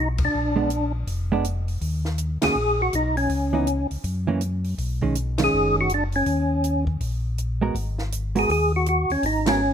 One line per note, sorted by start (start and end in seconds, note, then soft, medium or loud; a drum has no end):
0.00 0.29 B1 medium
0.18 kick medium
0.18 ride medium
0.25 0.92 D4 medium
0.34 1.04 A#1 medium
0.56 0.69 G#3 medium
0.56 0.69 B3 medium
0.56 0.69 D4 medium
0.70 closed hi-hat medium
1.07 1.78 F1 medium
1.07 kick soft
1.07 open hi-hat soft
1.32 1.44 G#3 medium
1.32 1.44 B3 medium
1.32 1.44 D4 medium
1.44 closed hi-hat medium
1.68 open hi-hat soft
1.81 2.38 D#2 medium
1.81 kick soft
1.81 open hi-hat soft
2.05 snare soft
2.18 closed hi-hat medium
2.42 2.50 D#2 soft
2.42 2.55 D#3 medium
2.42 2.55 A#3 medium
2.42 2.55 C#4 medium
2.42 2.55 F#4 medium
2.42 2.81 G#4 loud
2.42 snare medium
2.42 ride medium
2.55 2.90 A#1 medium
2.82 2.95 F#4 medium
2.93 3.28 B1 medium
2.93 3.16 D#4 medium
2.93 closed hi-hat medium
3.17 3.87 C#4 medium
3.17 open hi-hat soft
3.29 3.86 C#2 medium
3.29 kick soft
3.29 open hi-hat soft
3.53 3.66 E3 medium
3.53 3.66 B3 medium
3.53 3.66 D#4 medium
3.67 closed hi-hat soft
3.91 3.97 C#2 soft
3.91 open hi-hat soft
4.04 4.75 F#2 medium
4.04 kick soft
4.04 open hi-hat soft
4.27 4.40 E3 medium
4.27 4.40 A#3 medium
4.27 4.40 C#4 medium
4.41 closed hi-hat medium
4.64 open hi-hat soft
4.78 5.49 B1 medium
4.78 kick soft
4.78 open hi-hat soft
5.02 5.15 D#3 medium
5.02 5.15 G#3 medium
5.02 5.15 C#4 medium
5.02 kick soft
5.15 closed hi-hat medium
5.38 5.87 D#3 medium
5.38 5.88 G#3 medium
5.38 5.88 C#4 medium
5.38 snare medium
5.38 ride medium
5.44 5.76 G#4 loud
5.53 6.24 F#1 medium
5.81 5.93 F#4 medium
5.89 closed hi-hat soft
5.94 6.04 D4 medium
6.12 6.85 C#4 medium
6.12 open hi-hat soft
6.26 6.97 D#2 medium
6.26 kick soft
6.26 open hi-hat soft
6.64 closed hi-hat medium
6.87 kick medium
7.01 7.71 A#1 medium
7.01 kick soft
7.01 open hi-hat soft
7.38 closed hi-hat soft
7.61 7.74 G#3 medium
7.61 7.74 B3 medium
7.61 7.74 F#4 medium
7.61 7.74 A#4 medium
7.74 8.45 G#1 medium
7.74 kick soft
7.74 open hi-hat soft
7.98 snare soft
8.12 closed hi-hat medium
8.35 8.48 G#3 medium
8.35 8.48 B3 medium
8.35 8.48 F#4 medium
8.35 8.50 G#4 medium
8.35 8.49 A#4 medium
8.35 open hi-hat soft
8.49 9.06 D#2 medium
8.49 8.72 G#4 loud
8.49 kick soft
8.49 open hi-hat soft
8.76 8.87 F#4 medium
8.86 9.12 F#4 medium
8.86 closed hi-hat medium
9.10 9.17 D#2 soft
9.10 9.25 C#4 medium
9.10 open hi-hat soft
9.23 9.73 G#1 medium
9.23 9.47 D#4 medium
9.23 kick soft
9.23 open hi-hat soft
9.46 9.59 G#3 medium
9.46 9.59 B3 medium
9.46 9.73 C#4 medium
9.46 9.60 F#4 medium
9.46 9.60 A#4 medium
9.46 snare medium
9.46 ride medium